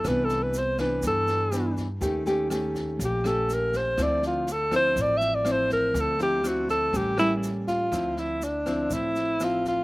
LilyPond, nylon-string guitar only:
\new Staff \with { instrumentName = "Nylon-string guitar" } { \time 4/4 \key d \minor \tempo 4 = 122 << { <e b d'>4 r8 <e b d'>4. <e b d'>8 r8 | <a des' g'>8 <a des' g'>8 <a des' g'>4. <a des' g'>4. | <f c' e'>4 r8 <f c' e'>4. <f c' e'>4~ | <f c' e'>8 <f c' e'>8 <f c' e'>4 <g bes cis'>8 <g bes cis'>4. |
<f c' e'>4 r8 <f c' e'>4. <f c' e'>4 | } \\ { c2 g,2 | ees2 bes,2 | d2 a,2 | d2 a,2 |
d2 a,2 | } >> }